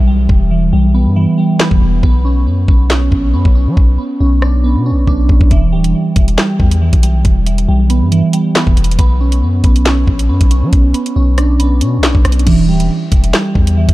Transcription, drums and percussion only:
0.29 kick
1.60 snare, clap
1.71 kick
2.03 kick
2.68 kick
2.90 snare, clap
3.12 kick
3.45 kick
3.77 kick
4.42 cross-stick
5.07 kick
5.29 kick
5.41 kick
5.51 kick, closed hi-hat
5.84 closed hi-hat
6.16 kick, closed hi-hat
6.28 closed hi-hat
6.38 snare, clap
6.60 kick
6.71 closed hi-hat
6.93 kick, closed hi-hat
7.03 closed hi-hat
7.25 kick, closed hi-hat
7.46 closed hi-hat
7.58 closed hi-hat
7.90 closed hi-hat
8.12 closed hi-hat
8.33 closed hi-hat
8.55 snare, clap
8.67 kick
8.77 closed hi-hat
8.84 closed hi-hat
8.91 closed hi-hat
8.99 kick, closed hi-hat
9.32 closed hi-hat
9.64 kick, closed hi-hat
9.76 closed hi-hat
9.86 snare, clap
10.07 kick
10.19 closed hi-hat
10.41 kick, closed hi-hat
10.51 closed hi-hat
10.73 kick, closed hi-hat
10.94 closed hi-hat
11.06 closed hi-hat
11.38 cross-stick, closed hi-hat
11.60 closed hi-hat
11.81 closed hi-hat
12.03 snare, clap
12.15 kick
12.25 cross-stick, closed hi-hat
12.32 closed hi-hat
12.39 closed hi-hat
12.47 kick, closed hi-hat, crash
12.80 closed hi-hat
13.12 kick, closed hi-hat
13.24 closed hi-hat
13.34 snare, clap
13.55 kick
13.67 closed hi-hat
13.89 kick, closed hi-hat

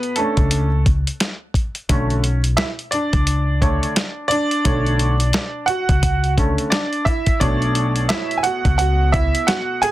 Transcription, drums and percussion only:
0.03 closed hi-hat
0.16 closed hi-hat
0.37 kick, closed hi-hat
0.51 closed hi-hat
0.86 kick, closed hi-hat
1.07 closed hi-hat
1.20 snare, closed hi-hat
1.54 kick, closed hi-hat
1.75 closed hi-hat
1.89 kick, closed hi-hat
2.10 closed hi-hat
2.24 closed hi-hat
2.44 closed hi-hat
2.57 snare, closed hi-hat
2.79 closed hi-hat
2.92 closed hi-hat
3.13 kick, closed hi-hat
3.27 closed hi-hat
3.62 kick, closed hi-hat
3.83 closed hi-hat
3.96 snare, closed hi-hat
4.31 closed hi-hat
4.51 closed hi-hat
4.65 kick, closed hi-hat
4.86 closed hi-hat
4.99 closed hi-hat
5.20 closed hi-hat
5.33 snare, closed hi-hat
5.68 closed hi-hat
5.89 kick, closed hi-hat
6.03 kick, closed hi-hat
6.24 closed hi-hat
6.38 kick, closed hi-hat
6.58 closed hi-hat
6.72 snare, closed hi-hat
6.93 closed hi-hat
7.06 kick, closed hi-hat
7.26 kick, closed hi-hat
7.41 kick, closed hi-hat
7.62 closed hi-hat
7.75 closed hi-hat
7.96 closed hi-hat
8.09 snare, closed hi-hat
8.31 closed hi-hat
8.44 closed hi-hat
8.65 kick, closed hi-hat
8.79 closed hi-hat
9.14 kick, closed hi-hat
9.35 closed hi-hat
9.48 snare, closed hi-hat
9.83 closed hi-hat

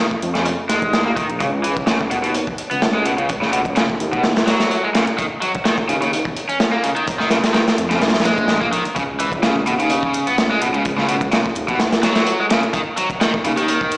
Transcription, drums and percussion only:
0.11 kick
0.22 closed hi-hat
0.35 snare, closed hi-hat
0.45 closed hi-hat
0.69 snare, closed hi-hat
0.82 kick, closed hi-hat
0.93 snare, closed hi-hat
1.16 kick, closed hi-hat
1.30 closed hi-hat
1.40 kick, closed hi-hat
1.64 closed hi-hat
1.77 kick, closed hi-hat
1.87 snare, closed hi-hat
2.01 kick
2.11 closed hi-hat
2.24 closed hi-hat
2.34 closed hi-hat
2.47 kick
2.58 closed hi-hat
2.71 closed hi-hat
2.82 snare, closed hi-hat
3.05 closed hi-hat
3.18 closed hi-hat
3.29 kick, closed hi-hat
3.42 snare
3.53 closed hi-hat
3.65 kick, closed hi-hat
3.76 snare, closed hi-hat
3.90 kick
4.00 closed hi-hat
4.13 kick, closed hi-hat
4.24 snare, closed hi-hat
4.36 snare, closed hi-hat
4.47 snare, closed hi-hat
4.60 snare, closed hi-hat
4.71 closed hi-hat
4.95 snare, closed hi-hat
5.07 closed hi-hat
5.18 kick, closed hi-hat
5.42 closed hi-hat
5.55 kick, closed hi-hat
5.65 snare, closed hi-hat
5.78 kick
5.89 closed hi-hat
6.02 closed hi-hat
6.13 closed hi-hat
6.25 kick
6.37 closed hi-hat
6.49 closed hi-hat
6.60 snare, closed hi-hat
6.84 closed hi-hat
6.96 closed hi-hat
7.07 kick, closed hi-hat
7.20 snare
7.31 snare, closed hi-hat
7.44 snare, closed hi-hat
7.54 snare, closed hi-hat
7.68 snare, closed hi-hat
7.78 closed hi-hat
7.91 snare, closed hi-hat
8.01 snare, closed hi-hat
8.08 snare, closed hi-hat
8.14 snare, closed hi-hat
8.20 snare, closed hi-hat
8.25 snare, closed hi-hat
8.38 kick, closed hi-hat
8.48 snare, closed hi-hat
8.61 kick
8.73 closed hi-hat
8.85 closed hi-hat
8.96 kick, closed hi-hat
9.19 closed hi-hat
9.32 kick, closed hi-hat
9.43 snare, closed hi-hat
9.56 kick
9.66 closed hi-hat
9.79 closed hi-hat
9.90 closed hi-hat
10.03 kick
10.14 closed hi-hat
10.27 closed hi-hat
10.38 snare, closed hi-hat
10.62 closed hi-hat
10.74 closed hi-hat
10.85 kick, closed hi-hat
10.98 snare
11.09 closed hi-hat
11.21 kick, closed hi-hat
11.32 snare, closed hi-hat
11.46 kick
11.55 closed hi-hat
11.68 kick, closed hi-hat
11.80 snare, closed hi-hat
11.92 snare, closed hi-hat
12.03 snare, closed hi-hat
12.15 snare, closed hi-hat
12.26 closed hi-hat
12.50 snare, closed hi-hat
12.63 closed hi-hat
12.73 kick, closed hi-hat
12.97 closed hi-hat
13.10 kick, closed hi-hat
13.21 snare, closed hi-hat
13.34 kick
13.45 closed hi-hat
13.57 closed hi-hat
13.68 closed hi-hat
13.81 kick
13.91 closed hi-hat

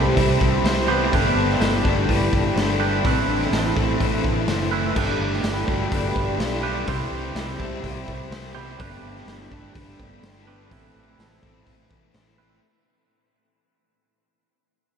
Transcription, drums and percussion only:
0.17 kick, open hi-hat
0.41 kick
0.65 snare, open hi-hat
1.13 kick, open hi-hat
1.50 snare
1.61 snare, open hi-hat
1.85 kick
2.09 kick, open hi-hat
2.33 kick
2.57 snare, open hi-hat
3.05 kick, open hi-hat
3.42 snare
3.53 snare, open hi-hat
3.77 kick
4.00 kick, open hi-hat
4.24 kick
4.48 snare, open hi-hat
4.96 kick, crash
5.33 snare
5.44 snare, open hi-hat
5.68 kick
5.92 kick, open hi-hat
6.16 kick
6.40 snare, open hi-hat
6.87 kick, open hi-hat
7.36 snare, open hi-hat
7.60 kick
7.84 kick, open hi-hat
8.08 kick
8.32 snare, open hi-hat
8.80 kick, open hi-hat
9.17 snare
9.28 snare, open hi-hat
9.52 kick
9.75 kick, open hi-hat
9.99 kick
10.23 snare, open hi-hat
10.71 kick, open hi-hat
11.19 snare, open hi-hat
11.43 kick
11.67 kick, open hi-hat
11.91 kick
12.14 snare, open hi-hat

